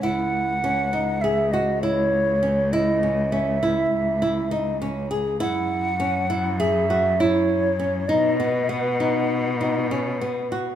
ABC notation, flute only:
X:1
M:9/8
L:1/8
Q:3/8=67
K:C#m
V:1 name="Flute"
f4 e d c3 | d2 e4 z3 | f4 e2 c3 | d2 f4 z3 |]